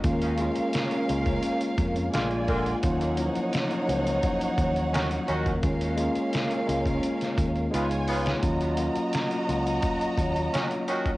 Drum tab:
HH |xxxxxxxxxxxxxxxx|xxxxxxxxxxxxxxxx|xxxxxxxxxxxxxxox|xxxxxxxxxxxxxxxx|
SD |----o-------o---|----o-------o---|----o----o-----o|----o-------o---|
BD |o------o--o---o-|o-------o-o----o|o------o--o-----|o-------o-o----o|